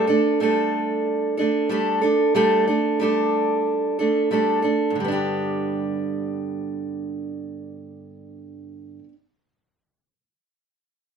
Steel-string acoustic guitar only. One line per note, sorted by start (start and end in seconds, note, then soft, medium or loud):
0.07 0.40 A3 soft
0.07 0.40 D4 soft
0.07 0.40 A4 soft
0.40 1.40 G3 medium
0.40 1.38 A3 medium
0.40 1.39 D4 medium
0.40 1.36 A4 medium
1.37 1.69 A3 soft
1.37 1.70 D4 soft
1.37 1.70 A4 soft
1.69 2.02 G3 medium
1.69 2.03 A3 medium
1.69 2.02 D4 medium
1.69 2.00 A4 medium
2.01 2.34 A3 soft
2.01 2.35 D4 soft
2.01 2.35 A4 soft
2.35 2.68 G3 medium
2.35 2.68 A3 medium
2.35 2.67 D4 medium
2.35 2.66 A4 medium
2.67 3.00 A3 soft
2.67 3.00 D4 soft
2.67 3.00 A4 soft
2.99 4.02 G3 medium
2.99 3.99 A3 medium
2.99 4.00 D4 medium
2.99 3.98 A4 medium
3.99 4.30 A3 soft
3.99 4.31 D4 soft
3.99 4.31 A4 soft
4.31 4.64 G3 medium
4.31 4.64 A3 medium
4.31 4.63 D4 medium
4.31 4.61 A4 medium
4.62 4.97 A3 soft
4.62 4.97 D4 soft
4.62 4.96 A4 soft
4.90 8.98 G2 medium
4.95 9.04 D3 medium
5.00 9.08 G3 medium
5.04 9.12 B3 medium
5.04 9.14 D4 medium
5.12 9.16 G4 medium